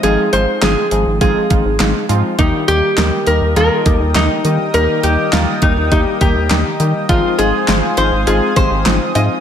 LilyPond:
<<
  \new Staff \with { instrumentName = "Analog synth pad" } { \time 4/4 \key ees \major \tempo 4 = 102 r1 | <bes' ees'' g'' ees'''>1~ | <bes' ees'' g'' ees'''>1 | <c'' f'' aes'' ees'''>1 | }
  \new Staff \with { instrumentName = "Resonator guitar played with a steel bar" } { \time 4/4 \key ees \major aes'8 c''8 aes'4 aes'4. r8 | ees'8 g'4 bes'8 bes'4 ees'8. r16 | bes'8 g'8 f'8 ees'8 ees'8 g'4 r8 | f'8 aes'4 c''8 aes'8 c''4 ees''8 | }
  \new Staff \with { instrumentName = "Synth keys" } { \time 4/4 \key ees \major <f aes c' ees' f'>8 <f aes c' ees' f'>8 <f aes c' ees' f'>8 <f aes c' ees' aes'>8 <f aes c' ees' f'>8 <f aes c' ees' f'>8 <f aes c' ees' f'>8 <f aes c' ees' f'>8 | <ees g bes ees' g'>8 <ees g bes ees' g'>8 <ees g bes ees' g'>8 <ees g bes ees' g'>8 <ees g bes ees' f'>8 <ees g bes ees' g'>8 <ees g bes ees' g'>8 <ees g bes ees' g'>8 | <ees g bes ees' g'>8 <ees g bes ees' g'>8 <ees g bes ees' g'>8 <ees g bes ees' g'>8 <ees g bes ees' g'>8 <ees g bes ees' g'>8 <ees g bes ees' g'>8 <ees g bes ees' g'>8 | <f aes c' ees' f'>8 <f aes c' ees' f'>8 <f aes c' ees' f'>8 <f aes c' ees' f'>8 <f aes c' ees' f'>8 <f aes c' ees' g'>8 <f aes c' ees' f'>8 <f aes c' ees' f'>8 | }
  \new Staff \with { instrumentName = "Analog synth bass" } { \clef bass \time 4/4 \key ees \major aes,,16 r16 aes,,16 r16 aes,,16 r16 aes,,16 aes,,16 aes,,16 r16 aes,,16 aes,,16 aes,,16 r16 aes,16 r16 | ees,16 r16 ees,16 r16 ees,16 r16 ees,16 ees,16 ees,16 r16 ees,16 ees,16 ees,16 r16 ees16 r16 | ees,16 r16 ees,16 r16 ees,16 r16 ees,16 ees,16 ees,16 r16 ees,16 ees,16 ees,16 r16 ees16 r16 | aes,,16 r16 aes,,16 r16 aes,,16 r16 aes,,16 aes,,16 aes,,16 r16 aes,,16 aes,,16 aes,,16 r16 aes,16 r16 | }
  \new DrumStaff \with { instrumentName = "Drums" } \drummode { \time 4/4 hh8 hh8 <hc hh sn>8 hh8 <hh bd>8 <hh bd>8 <hc hh sn>8 hh8 | <hh bd>8 hh8 <hc hh sn>8 hh8 hh8 <hh bd>8 <hc hh sn>8 hh8 | hh8 hh8 <hc hh sn>8 <hh bd>8 <hh bd>8 <hh bd>8 <hc hh sn>8 hh8 | <hh bd>8 hh8 <hc hh sn>8 hh8 hh8 <hh bd>8 <hc hh sn>8 hh8 | }
>>